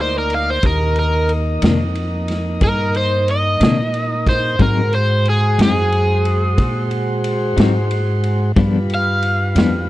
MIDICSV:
0, 0, Header, 1, 6, 480
1, 0, Start_track
1, 0, Key_signature, -3, "minor"
1, 0, Tempo, 660793
1, 463, Time_signature, 12, 3, 24, 8
1, 7187, End_track
2, 0, Start_track
2, 0, Title_t, "Overdriven electric guitar"
2, 0, Program_c, 0, 29
2, 8, Note_on_c, 0, 72, 93
2, 112, Note_off_c, 0, 72, 0
2, 133, Note_on_c, 0, 70, 97
2, 234, Note_off_c, 0, 70, 0
2, 251, Note_on_c, 0, 77, 91
2, 353, Note_off_c, 0, 77, 0
2, 365, Note_on_c, 0, 72, 101
2, 470, Note_off_c, 0, 72, 0
2, 484, Note_on_c, 0, 70, 89
2, 706, Note_off_c, 0, 70, 0
2, 721, Note_on_c, 0, 70, 101
2, 945, Note_off_c, 0, 70, 0
2, 1918, Note_on_c, 0, 70, 100
2, 2144, Note_off_c, 0, 70, 0
2, 2158, Note_on_c, 0, 72, 82
2, 2384, Note_off_c, 0, 72, 0
2, 2402, Note_on_c, 0, 75, 93
2, 3091, Note_off_c, 0, 75, 0
2, 3118, Note_on_c, 0, 72, 87
2, 3344, Note_off_c, 0, 72, 0
2, 3354, Note_on_c, 0, 70, 85
2, 3582, Note_off_c, 0, 70, 0
2, 3594, Note_on_c, 0, 72, 84
2, 3821, Note_off_c, 0, 72, 0
2, 3846, Note_on_c, 0, 68, 92
2, 4068, Note_off_c, 0, 68, 0
2, 4087, Note_on_c, 0, 68, 86
2, 5006, Note_off_c, 0, 68, 0
2, 6498, Note_on_c, 0, 77, 100
2, 7177, Note_off_c, 0, 77, 0
2, 7187, End_track
3, 0, Start_track
3, 0, Title_t, "Tonewheel organ"
3, 0, Program_c, 1, 16
3, 0, Note_on_c, 1, 58, 59
3, 0, Note_on_c, 1, 63, 65
3, 0, Note_on_c, 1, 74, 63
3, 431, Note_off_c, 1, 63, 0
3, 431, Note_off_c, 1, 74, 0
3, 433, Note_off_c, 1, 58, 0
3, 459, Note_on_c, 1, 63, 59
3, 462, Note_on_c, 1, 58, 58
3, 462, Note_on_c, 1, 75, 61
3, 3313, Note_off_c, 1, 63, 0
3, 3314, Note_off_c, 1, 58, 0
3, 3315, Note_off_c, 1, 75, 0
3, 3333, Note_on_c, 1, 66, 61
3, 3336, Note_on_c, 1, 72, 57
3, 3338, Note_on_c, 1, 56, 55
3, 6188, Note_off_c, 1, 66, 0
3, 6189, Note_off_c, 1, 72, 0
3, 6190, Note_off_c, 1, 56, 0
3, 6220, Note_on_c, 1, 55, 62
3, 6220, Note_on_c, 1, 71, 55
3, 6227, Note_on_c, 1, 65, 60
3, 7187, Note_off_c, 1, 55, 0
3, 7187, Note_off_c, 1, 65, 0
3, 7187, Note_off_c, 1, 71, 0
3, 7187, End_track
4, 0, Start_track
4, 0, Title_t, "Clean electric guitar"
4, 0, Program_c, 2, 27
4, 1177, Note_on_c, 2, 62, 66
4, 1185, Note_on_c, 2, 58, 67
4, 1193, Note_on_c, 2, 51, 64
4, 1194, Note_on_c, 2, 48, 57
4, 1324, Note_off_c, 2, 62, 0
4, 1328, Note_off_c, 2, 58, 0
4, 1332, Note_off_c, 2, 51, 0
4, 1333, Note_off_c, 2, 48, 0
4, 2617, Note_on_c, 2, 62, 65
4, 2623, Note_on_c, 2, 58, 57
4, 2627, Note_on_c, 2, 51, 54
4, 2635, Note_on_c, 2, 48, 55
4, 2764, Note_off_c, 2, 62, 0
4, 2767, Note_off_c, 2, 58, 0
4, 2769, Note_off_c, 2, 51, 0
4, 2773, Note_off_c, 2, 48, 0
4, 3334, Note_on_c, 2, 44, 75
4, 3344, Note_on_c, 2, 54, 71
4, 3346, Note_on_c, 2, 60, 82
4, 3354, Note_on_c, 2, 63, 84
4, 3483, Note_off_c, 2, 44, 0
4, 3488, Note_off_c, 2, 54, 0
4, 3489, Note_off_c, 2, 60, 0
4, 3492, Note_off_c, 2, 63, 0
4, 4055, Note_on_c, 2, 63, 60
4, 4060, Note_on_c, 2, 60, 59
4, 4067, Note_on_c, 2, 54, 48
4, 4068, Note_on_c, 2, 44, 47
4, 4203, Note_off_c, 2, 63, 0
4, 4206, Note_off_c, 2, 60, 0
4, 4209, Note_off_c, 2, 54, 0
4, 4210, Note_off_c, 2, 44, 0
4, 5496, Note_on_c, 2, 63, 72
4, 5507, Note_on_c, 2, 60, 75
4, 5511, Note_on_c, 2, 54, 64
4, 5515, Note_on_c, 2, 44, 61
4, 5643, Note_off_c, 2, 63, 0
4, 5649, Note_off_c, 2, 60, 0
4, 5650, Note_off_c, 2, 54, 0
4, 5652, Note_off_c, 2, 44, 0
4, 6220, Note_on_c, 2, 43, 90
4, 6225, Note_on_c, 2, 53, 90
4, 6232, Note_on_c, 2, 59, 89
4, 6238, Note_on_c, 2, 62, 92
4, 6365, Note_off_c, 2, 43, 0
4, 6367, Note_off_c, 2, 53, 0
4, 6371, Note_off_c, 2, 59, 0
4, 6374, Note_off_c, 2, 62, 0
4, 6942, Note_on_c, 2, 62, 68
4, 6950, Note_on_c, 2, 59, 68
4, 6953, Note_on_c, 2, 53, 56
4, 6959, Note_on_c, 2, 43, 53
4, 7085, Note_off_c, 2, 62, 0
4, 7089, Note_off_c, 2, 59, 0
4, 7091, Note_off_c, 2, 53, 0
4, 7094, Note_off_c, 2, 43, 0
4, 7187, End_track
5, 0, Start_track
5, 0, Title_t, "Upright bass"
5, 0, Program_c, 3, 32
5, 0, Note_on_c, 3, 38, 82
5, 442, Note_off_c, 3, 38, 0
5, 458, Note_on_c, 3, 39, 82
5, 1159, Note_off_c, 3, 39, 0
5, 1182, Note_on_c, 3, 41, 93
5, 1881, Note_off_c, 3, 41, 0
5, 1898, Note_on_c, 3, 43, 78
5, 2599, Note_off_c, 3, 43, 0
5, 2620, Note_on_c, 3, 46, 83
5, 3320, Note_off_c, 3, 46, 0
5, 3334, Note_on_c, 3, 44, 87
5, 4037, Note_off_c, 3, 44, 0
5, 4057, Note_on_c, 3, 42, 92
5, 4758, Note_off_c, 3, 42, 0
5, 4777, Note_on_c, 3, 46, 85
5, 5478, Note_off_c, 3, 46, 0
5, 5502, Note_on_c, 3, 44, 91
5, 6200, Note_off_c, 3, 44, 0
5, 6220, Note_on_c, 3, 43, 81
5, 6918, Note_off_c, 3, 43, 0
5, 6938, Note_on_c, 3, 41, 92
5, 7187, Note_off_c, 3, 41, 0
5, 7187, End_track
6, 0, Start_track
6, 0, Title_t, "Drums"
6, 217, Note_on_c, 9, 51, 54
6, 290, Note_off_c, 9, 51, 0
6, 456, Note_on_c, 9, 51, 72
6, 459, Note_on_c, 9, 36, 94
6, 528, Note_off_c, 9, 51, 0
6, 532, Note_off_c, 9, 36, 0
6, 695, Note_on_c, 9, 51, 58
6, 767, Note_off_c, 9, 51, 0
6, 937, Note_on_c, 9, 51, 58
6, 1009, Note_off_c, 9, 51, 0
6, 1176, Note_on_c, 9, 51, 83
6, 1193, Note_on_c, 9, 38, 101
6, 1249, Note_off_c, 9, 51, 0
6, 1265, Note_off_c, 9, 38, 0
6, 1419, Note_on_c, 9, 51, 57
6, 1492, Note_off_c, 9, 51, 0
6, 1657, Note_on_c, 9, 51, 57
6, 1674, Note_on_c, 9, 38, 33
6, 1730, Note_off_c, 9, 51, 0
6, 1746, Note_off_c, 9, 38, 0
6, 1896, Note_on_c, 9, 51, 74
6, 1899, Note_on_c, 9, 36, 82
6, 1968, Note_off_c, 9, 51, 0
6, 1971, Note_off_c, 9, 36, 0
6, 2139, Note_on_c, 9, 51, 56
6, 2212, Note_off_c, 9, 51, 0
6, 2382, Note_on_c, 9, 51, 62
6, 2455, Note_off_c, 9, 51, 0
6, 2620, Note_on_c, 9, 51, 79
6, 2637, Note_on_c, 9, 38, 114
6, 2692, Note_off_c, 9, 51, 0
6, 2709, Note_off_c, 9, 38, 0
6, 2860, Note_on_c, 9, 51, 55
6, 2932, Note_off_c, 9, 51, 0
6, 3099, Note_on_c, 9, 36, 75
6, 3100, Note_on_c, 9, 51, 60
6, 3117, Note_on_c, 9, 38, 32
6, 3171, Note_off_c, 9, 36, 0
6, 3173, Note_off_c, 9, 51, 0
6, 3190, Note_off_c, 9, 38, 0
6, 3337, Note_on_c, 9, 51, 67
6, 3338, Note_on_c, 9, 36, 98
6, 3410, Note_off_c, 9, 36, 0
6, 3410, Note_off_c, 9, 51, 0
6, 3579, Note_on_c, 9, 51, 56
6, 3651, Note_off_c, 9, 51, 0
6, 3817, Note_on_c, 9, 51, 54
6, 3889, Note_off_c, 9, 51, 0
6, 4060, Note_on_c, 9, 51, 78
6, 4077, Note_on_c, 9, 38, 99
6, 4133, Note_off_c, 9, 51, 0
6, 4150, Note_off_c, 9, 38, 0
6, 4303, Note_on_c, 9, 51, 55
6, 4376, Note_off_c, 9, 51, 0
6, 4541, Note_on_c, 9, 51, 60
6, 4614, Note_off_c, 9, 51, 0
6, 4780, Note_on_c, 9, 36, 78
6, 4780, Note_on_c, 9, 51, 78
6, 4852, Note_off_c, 9, 36, 0
6, 4853, Note_off_c, 9, 51, 0
6, 5018, Note_on_c, 9, 51, 61
6, 5091, Note_off_c, 9, 51, 0
6, 5260, Note_on_c, 9, 51, 68
6, 5332, Note_off_c, 9, 51, 0
6, 5502, Note_on_c, 9, 51, 77
6, 5519, Note_on_c, 9, 38, 99
6, 5575, Note_off_c, 9, 51, 0
6, 5592, Note_off_c, 9, 38, 0
6, 5744, Note_on_c, 9, 51, 66
6, 5816, Note_off_c, 9, 51, 0
6, 5982, Note_on_c, 9, 51, 57
6, 6055, Note_off_c, 9, 51, 0
6, 6220, Note_on_c, 9, 51, 82
6, 6222, Note_on_c, 9, 36, 97
6, 6293, Note_off_c, 9, 51, 0
6, 6295, Note_off_c, 9, 36, 0
6, 6462, Note_on_c, 9, 51, 58
6, 6535, Note_off_c, 9, 51, 0
6, 6701, Note_on_c, 9, 51, 60
6, 6774, Note_off_c, 9, 51, 0
6, 6942, Note_on_c, 9, 51, 81
6, 6959, Note_on_c, 9, 38, 105
6, 7015, Note_off_c, 9, 51, 0
6, 7031, Note_off_c, 9, 38, 0
6, 7187, End_track
0, 0, End_of_file